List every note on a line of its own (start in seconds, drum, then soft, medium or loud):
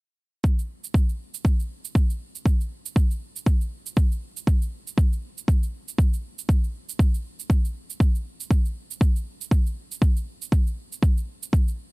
0.44 kick loud
0.44 cabasa medium
0.59 cabasa soft
0.84 cabasa medium
0.94 kick loud
0.94 cabasa medium
1.09 cabasa soft
1.34 cabasa medium
1.45 kick loud
1.45 cabasa medium
1.60 cabasa soft
1.85 cabasa medium
1.95 kick loud
1.95 cabasa medium
2.10 cabasa soft
2.35 cabasa medium
2.46 kick loud
2.46 cabasa medium
2.60 cabasa soft
2.86 cabasa medium
2.96 kick loud
2.96 cabasa medium
3.11 cabasa soft
3.36 cabasa medium
3.46 kick loud
3.46 cabasa medium
3.61 cabasa soft
3.86 cabasa medium
3.97 kick loud
3.97 cabasa medium
4.12 cabasa soft
4.37 cabasa medium
4.47 kick loud
4.47 cabasa medium
4.62 cabasa soft
4.87 cabasa medium
4.98 kick loud
4.98 cabasa medium
5.13 cabasa soft
5.38 cabasa medium
5.48 kick loud
5.48 cabasa medium
5.63 cabasa soft
5.88 cabasa medium
5.98 kick loud
5.98 cabasa medium
6.13 cabasa soft
6.39 cabasa medium
6.49 kick loud
6.49 cabasa medium
6.64 cabasa soft
6.89 cabasa medium
6.99 kick loud
6.99 cabasa medium
7.14 cabasa soft
7.39 cabasa medium
7.50 kick loud
7.50 cabasa medium
7.65 cabasa soft
7.90 cabasa medium
8.00 kick loud
8.00 cabasa medium
8.15 cabasa soft
8.40 cabasa medium
8.51 kick loud
8.51 cabasa medium
8.65 cabasa soft
8.91 cabasa medium
9.01 kick loud
9.01 cabasa medium
9.16 cabasa soft
9.41 cabasa medium
9.51 kick loud
9.51 cabasa medium
9.66 cabasa soft
9.92 cabasa medium
10.02 kick loud
10.02 cabasa medium
10.17 cabasa soft
10.42 cabasa medium
10.52 kick loud
10.52 cabasa medium
10.67 cabasa soft
10.92 cabasa medium
11.03 kick loud
11.03 cabasa medium
11.18 cabasa soft
11.43 cabasa medium
11.53 kick loud
11.53 cabasa medium
11.68 cabasa soft